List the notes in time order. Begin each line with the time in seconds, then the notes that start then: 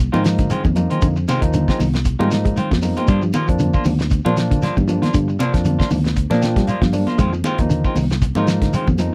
0.12 G#2 D#3 F3 G#3 A#3 C4 D#4 F4, high conga, shekere
0.24 F3, muted clean electric guitar stroke, snare, closed hi-hat, shekere
0.38 D3, kick, closed hi-hat, shekere
0.50 D#3 G#3 C4 F4, muted fingered electric bass stroke, closed hi-hat, low conga, shekere
0.64 F2 D#3, muted clean electric guitar stroke, kick, high conga, shekere
0.75 F3 A#3 D#4, muted clean electric guitar stroke, closed hi-hat, low conga, shekere
0.90 D#3 G#3 C4 F4, closed hi-hat, shekere
1.02 F2 D3, kick, closed hi-hat, shekere
1.16 muted clean electric guitar stroke, shekere
1.28 C3 D#3 G#3 C4 F4, snare, closed hi-hat, high conga, shekere
1.41 D#2 F3 A#3 D#4, muted clean electric guitar stroke, kick, closed hi-hat, shekere
1.54 D3, closed hi-hat, high conga, low conga, shekere
1.68 G#3 C4 F4, kick, snare, shekere
1.79 C2 D#3, muted clean electric guitar stroke, open hi-hat, high conga, low conga, shekere
1.94 muted clean electric guitar stroke, snare, closed hi-hat, shekere
2.05 muted clean electric guitar stroke, kick, closed hi-hat, shekere
2.19 G#2 D#3 F3 G3 G#3 A#3 C4 D#4 F4, high conga, shekere
2.31 muted clean electric guitar stroke, snare, closed hi-hat, shekere
2.45 G#3, kick, closed hi-hat, shekere
2.56 D#3 C4 F4, muted fingered electric bass stroke, closed hi-hat, low conga, shekere
2.71 F2, muted clean electric guitar stroke, kick, snare, high conga, shekere
2.82 F3 A#3 D#4, muted clean electric guitar stroke, open hi-hat, low conga, shekere
2.96 G#3 C4 F4, closed hi-hat, high conga, shekere
3.08 G2 F3 G3 A#3 D4 F4, kick, closed hi-hat, shekere
3.22 F3, muted clean electric guitar stroke, shekere
3.33 D#3 F3 A#3 F4, closed hi-hat, high conga, shekere
3.48 F2 F3 A#3 D4, muted clean electric guitar stroke, kick, closed hi-hat, shekere
3.59 D3, closed hi-hat, high conga, low conga, shekere
3.74 A#3 D4 F4, kick, shekere
3.85 D2 D#3, muted clean electric guitar stroke, open hi-hat, high conga, low conga, shekere
3.99 muted clean electric guitar stroke, snare, closed hi-hat, shekere
4.10 muted clean electric guitar stroke, kick, closed hi-hat, shekere
4.25 A#2 F3 A#3 D4 F4, high conga, shekere
4.37 F3, muted clean electric guitar stroke, snare, closed hi-hat, shekere
4.51 D3, kick, closed hi-hat, shekere
4.62 F3 A#3 D4 F4, muted fingered electric bass stroke, snare, closed hi-hat, low conga, shekere
4.77 G2 D#3, muted clean electric guitar stroke, kick, high conga, shekere
4.88 F3 A#3 D4, muted clean electric guitar stroke, closed hi-hat, low conga, shekere
5.02 D#3 A#3 D4 F4, snare, closed hi-hat, high conga, shekere
5.14 G2 D3, kick, closed hi-hat, shekere
5.28 muted clean electric guitar stroke, shekere
5.39 C3 F3 A#3 D4 F4, closed hi-hat, high conga, shekere
5.54 F2 F3 A#3 D4, muted clean electric guitar stroke, kick, snare, closed hi-hat, shekere
5.65 D3, closed hi-hat, high conga, low conga, shekere
5.79 A#3 D4 F4, kick, snare, shekere
5.90 D2 D#3, muted clean electric guitar stroke, open hi-hat, high conga, low conga, shekere
6.04 muted clean electric guitar stroke, snare, closed hi-hat, shekere
6.16 muted clean electric guitar stroke, kick, closed hi-hat, shekere
6.30 A#2 F3 A#3 D4, snare, high conga, shekere
6.42 G5, muted clean electric guitar stroke, snare, closed hi-hat, shekere
6.56 G3, kick, snare, closed hi-hat, shekere
6.67 F3 A#3 D4 F4 F5, muted fingered electric bass stroke, closed hi-hat, shekere
6.82 G2 F3, muted clean electric guitar stroke, kick, snare, high conga, shekere
6.93 F3 A#3 D4 D5, muted clean electric guitar stroke, open hi-hat, low conga, shekere
7.07 A#3 D4 F4, snare, closed hi-hat, high conga, shekere
7.18 F2 D#3 G#3 C4 F4, kick, closed hi-hat, shekere
7.33 F3, muted clean electric guitar stroke, shekere
7.44 D#3 G#3 C4 F4, closed hi-hat, high conga, shekere
7.58 D#2 F3 A#3 D#4, muted clean electric guitar stroke, kick, closed hi-hat, high conga, shekere
7.70 D3, closed hi-hat, shekere
7.84 G#3 C4 F4, kick, shekere
7.95 C2 D#3, muted clean electric guitar stroke, open hi-hat, high conga, low conga, shekere
8.10 muted clean electric guitar stroke, snare, closed hi-hat, shekere
8.22 muted clean electric guitar stroke, kick, closed hi-hat, shekere
8.35 G#2 D#3 F3 G#3 A#3 D#4 F4, muted clean electric guitar stroke, high conga, shekere
8.47 F3, muted clean electric guitar stroke, snare, closed hi-hat, shekere
8.62 D3, kick, snare, closed hi-hat, shekere
8.73 D#3 G#3 C4 F4, muted fingered electric bass stroke, closed hi-hat, low conga, shekere
8.87 F2 D#3, muted clean electric guitar stroke, kick, high conga, shekere
8.98 F3 A#3 D#4, muted clean electric guitar stroke, closed hi-hat, low conga, shekere